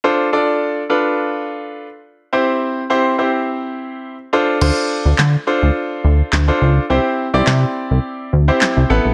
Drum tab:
CC |--------|--------|x-------|--------|
CP |--------|--------|--x---x-|--x---x-|
SD |--------|--------|--o---o-|--o---o-|